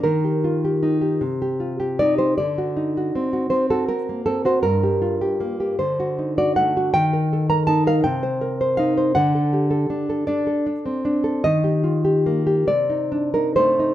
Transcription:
\new Staff \with { instrumentName = "Nylon-string guitar" } { \time 6/8 \key d \phrygian \tempo 4. = 52 << { bes'2~ bes'8 d''16 c''16 | d''4. c''16 a'16 bes'8 a'16 c''16 | bes'4. c''8. d''16 fis''8 | g''8. bes''16 a''16 f''16 g''4 f''8 |
fis''4. d''8 r4 | ees''4. d''8. bes'16 c''8 | } \\ { ees16 g'16 f'16 g'16 ees'16 g'16 c16 g'16 f'16 g'16 ees'16 g'16 | d16 fis'16 ees'16 fis'16 c'16 fis'16 c'16 fis'16 c'16 bes16 c'16 fis'16 | g,16 g'16 f'16 g'16 bes16 g'16 d16 fis'16 ees'16 fis'16 a16 fis'16 | ees16 bes'16 a'16 bes'16 ees'16 bes'16 c16 c''16 bes'16 c''16 ees'16 c''16 |
d16 a'16 g'16 a'16 d'16 a'16 d'16 a'16 d'16 c'16 d'16 a'16 | ees16 g'16 f'16 g'16 bes16 g'16 c16 ees'16 d'16 ees'16 a16 ees'16 | } >> }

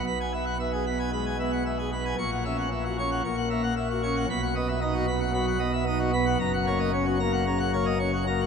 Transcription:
<<
  \new Staff \with { instrumentName = "Pipe organ" } { \time 4/4 \key fis \mixolydian \tempo 4 = 113 b''16 gis''16 e''16 fis''16 e''16 gis'16 b''16 gis''16 b''16 gis''16 e''16 fis''16 e''16 gis'16 b''16 gis''16 | cis'''16 fis''16 e''16 fis''16 e''16 fis'16 cis'''16 fis''16 cis'''16 fis''16 e''16 fis''16 e''16 fis'16 cis'''16 fis''16 | b''16 fis''16 dis''16 e''16 dis''16 fis'16 b''16 fis''16 b''16 fis''16 dis''16 e''16 dis''16 fis'16 b''16 fis''16 | ais''16 fis''16 cis''16 dis''16 cis''16 fis'16 ais''16 fis''16 ais''16 fis''16 cis''16 dis''16 cis''16 fis'16 ais''16 fis''16 | }
  \new Staff \with { instrumentName = "Pipe organ" } { \time 4/4 \key fis \mixolydian << { b,8 b8 r8 b8 gis8 b8 r8 b8 | ais,8 cis'8 r8 cis'8 ais,8 ais8 r8 cis'8 | b,8 b8 dis'8 b8 fis8 b8 dis'8 b8 | fis,8 ais8 cis'8 ais8 cis8 ais8 cis'8 ais8 | } \\ { b,,1 | ais,,2 ais,,2 | b,,1 | fis,,1 | } >> }
>>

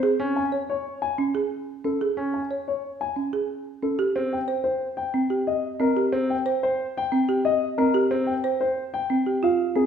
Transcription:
<<
  \new Staff \with { instrumentName = "Grand piano" } { \time 6/4 \key des \lydian \tempo 4 = 182 r4 aes''8 r8 des''8 r8 aes''8 r2 a'8 | r4 aes''8 r8 des''8 r8 aes''8 r2 a'8 | r4 g''8 r8 c''8 r8 g''8 r4 ees''8 r8 bes'8 | r4 g''8 r8 c''8 r8 g''8 r4 ees''8 r8 bes'8 |
r4 g''8 r8 c''8 r8 g''8 r4 f''8 r8 aes'8 | }
  \new Staff \with { instrumentName = "Marimba" } { \time 6/4 \key des \lydian aes'8 r4 des''8 r4. des'8 aes'8 r4 des'8 | aes'8 r4 des''8 r4. des'8 aes'8 r4 des'8 | g'8 r4 c''8 r4. c'8 g'8 r4 c'8 | g'8 r4 c''8 r4. c'8 g'8 r4 c'8 |
g'8 r4 c''8 r4. c'8 g'8 f'8 r8 c'8 | }
  \new Staff \with { instrumentName = "Grand piano" } { \time 6/4 \key des \lydian r8 des'8 r1 r4 | r8 des'8 r1 r4 | r8 c'8 r1 r4 | r8 c'8 r1 r4 |
r8 c'8 r1 r4 | }
>>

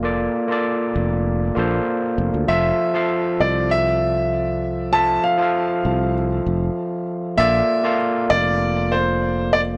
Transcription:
<<
  \new Staff \with { instrumentName = "Grand piano" } { \time 4/4 \key f \major \tempo 4 = 98 r1 | e''4. d''8 e''2 | a''8 f''4. r2 | e''4 r8 d''4 c''4 d''8 | }
  \new Staff \with { instrumentName = "Tine electric piano" } { \time 4/4 \key f \major <bes f' a' d''>8. <bes f' a' d''>4.~ <bes f' a' d''>16 <bes f' a' c''>4. | <f f' a' e''>8. <f f' a' f''>16 r2. | <f f' a' e''>8. <f f' a' f''>2.~ <f f' a' f''>16 | <bes f' a' d''>8. <bes f' a' f''>16 r2. | }
  \new Staff \with { instrumentName = "Fretless electric bass" } { \clef bass \time 4/4 \key f \major f,,8 r4 f,,4 bes,,16 r8. f,,16 d,16 | f,,16 r4 r16 c,2~ c,8~ | c,8 r4 c,4 f,,16 r4 r16 | bes,,16 r4 r16 f,,2~ f,,8 | }
>>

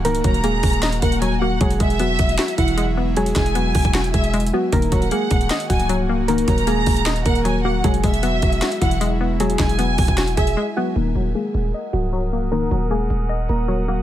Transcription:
<<
  \new Staff \with { instrumentName = "Violin section" } { \time 4/4 \key ees \phrygian \tempo 4 = 154 r8 bes''2 ges''8 aes''8 ges''8 | r8 e''2 fis''8 r4 | r8 gis''2 e''8 r4 | r8 ges''2 aes''8 r4 |
r8 bes''2 ges''8 aes''8 ges''8 | r8 e''2 fis''8 r4 | r8 gis''2 e''8 r4 | r1 |
r1 | }
  \new Staff \with { instrumentName = "Synth keys" } { \time 4/4 \key ees \phrygian <bes bes'>4 <aes aes'>4 r8 <bes bes'>4 <ges ges'>8 | <gis gis'>4 <fis fis'>4 r8 <e e'>4. | <gis gis'>4 <fis fis'>4. <gis gis'>4 <fis fis'>8 | <bes bes'>4 <aes aes'>4 r8 <ges ges'>4. |
<bes bes'>4 <aes aes'>4 r8 <bes bes'>4 <ges ges'>8 | <gis gis'>4 <fis fis'>4 r8 <e e'>4. | <gis gis'>4 <fis fis'>4. <gis gis'>4 <fis fis'>8 | <bes bes'>4 <aes aes'>4 r8 <ges ges'>4. |
<bes bes'>4 <aes aes'>4 r8 <bes bes'>4 <ges ges'>8 | }
  \new Staff \with { instrumentName = "Analog synth pad" } { \time 4/4 \key ees \phrygian <ees bes ges'>1 | <fis gis e'>1~ | <fis gis e'>1 | <ees bes ges'>1~ |
<ees bes ges'>1 | <fis gis e'>1~ | <fis gis e'>1 | <bes' ges'' ees'''>1~ |
<bes' ges'' ees'''>1 | }
  \new Staff \with { instrumentName = "Synth pluck" } { \time 4/4 \key ees \phrygian <ees ges bes ees''>8 ges8 bes4 ees''4 ges8 bes8 | fis8 gis8 b4 fis'4 gis8 b8 | fis8 gis8 b4 fis'4 gis8 b8 | ees8 ges8 bes4 ees''4 ges8 bes8 |
ees8 ges8 bes4 ees''4 ges8 bes8 | fis8 gis8 b4 fis'4 gis8 b8 | fis8 gis8 b4 fis'4 gis8 b8 | ees8 ges8 bes4 ees''4 ges8 bes8 |
ees8 ges8 bes4 ees''4 ges8 bes8 | }
  \new Staff \with { instrumentName = "808-style bass" } { \clef bass \time 4/4 \key ees \phrygian des,,8 ees,,4 ees,,4 ees,,4. | e,,8 e,,4 e,,8 r8 e,,4.~ | e,,8 e,,4 e,,16 e,,8. e,,4 r8 | ees,,8 ees,,8 r8 ees,,8 r8 des,,4.~ |
des,,8 ees,,4 ees,,4 ees,,4. | e,,8 e,,4 e,,8 r8 e,,4.~ | e,,8 e,,4 e,,16 e,,8. e,,8 r4 | ees,,8 ees,,8 r8 ees,,8 r8 des,,4.~ |
des,,8 ees,,4 ees,,4 ees,,4. | }
  \new DrumStaff \with { instrumentName = "Drums" } \drummode { \time 4/4 hh16 hh16 <hh bd>16 hh16 hh8 <hho bd>16 hh16 <hh sn>16 hh16 <hh bd>16 hh16 hh4 | <hh bd>16 hh16 <hh bd>16 hh16 hh8 <hh bd>16 hh16 <hh sn>16 hh16 <hh bd>16 hh16 hh4 | hh16 hh16 <hh bd sn>16 hh16 hh8 <hho bd>16 <hh bd>16 <hh sn>16 hh16 <hh bd>16 hh16 \tuplet 3/2 { hh16 hh16 hh16 r16 r16 r16 } | <hh bd>16 hh16 <hh bd>16 hh16 hh8 <hh bd>16 hh16 <hh sn>16 hh16 <hh bd>16 hh16 hh4 |
hh16 hh16 <hh bd>16 hh16 hh8 <hho bd>16 hh16 <hh sn>16 hh16 <hh bd>16 hh16 hh4 | <hh bd>16 hh16 <hh bd>16 hh16 hh8 <hh bd>16 hh16 <hh sn>16 hh16 <hh bd>16 hh16 hh4 | hh16 hh16 <hh bd sn>16 hh16 hh8 <hho bd>16 <hh bd>16 <hh sn>16 hh16 <hh bd>16 hh16 r4 | r4 r4 r4 r4 |
r4 r4 r4 r4 | }
>>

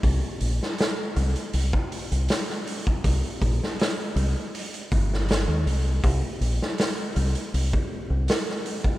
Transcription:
<<
  \new Staff \with { instrumentName = "Fingered electric bass" } { \clef bass \time 4/4 \key c \minor \tempo 4 = 80 c,16 r16 bes,,16 r8. c,16 r16 c,16 r8 c,16 r4 | c,16 r16 bes,,16 r8. c,16 r8. g,,8. ees,16 c,8 | c,16 r16 bes,,16 r8. c,16 r16 c,16 r8 c,16 r4 | }
  \new DrumStaff \with { instrumentName = "Drums" } \drummode { \time 4/4 <hho bd>8 hho16 sn16 <hho sn>8 hho16 hh16 hho16 bd16 hho16 hh16 <hho sn>16 sn16 hho16 bd16 | <hho bd>8 <hho bd>16 sn16 <hho sn>8 hho8 hho16 hh16 <hho bd>16 sn16 <hho sn>8 hho8 | <hho bd>8 hho16 sn16 <hho sn>8 hho16 hh16 hho16 bd8. <hho sn>16 sn16 hho16 bd16 | }
>>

